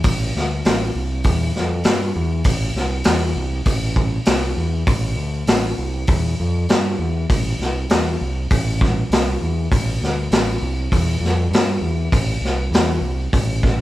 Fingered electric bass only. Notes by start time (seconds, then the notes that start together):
0.04 A1
0.35 D2
0.65 A1
0.95 C2
1.24 E2
1.56 F2
1.86 G2
2.15 E2
2.45 A1
2.75 C2
3.06 E2
3.35 C2
3.66 A1
4.27 C2
4.57 E2
4.87 A1
5.16 D2
5.46 A1
5.78 C2
6.08 E2
6.40 F2
6.69 G2
6.98 E2
7.29 A1
7.59 C2
7.90 E2
8.21 C2
8.51 A1
9.10 C2
9.41 E2
9.72 A1
10.01 D2
10.31 A1
10.62 C2
10.92 E2
11.20 F2
11.51 G2
11.81 E2
12.12 A1
12.41 C2
12.71 E2
13.01 C2
13.33 A1